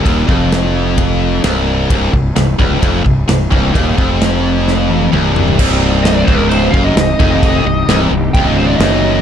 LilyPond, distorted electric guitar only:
\new Staff \with { instrumentName = "Distorted electric guitar" } { \clef bass \time 4/4 \key c \minor \tempo 4 = 130 ees,8 f,2~ f,8 c,4 | c,8 c,8 c,8 des,8 f,8 c,8 c,8 c,8 | ees,8 f,2~ f,8 c,4 | c,4. des,4 fis,8 c,8 f,8~ |
f,8 c,8 c,8 c,8 des,4 fis,4 | }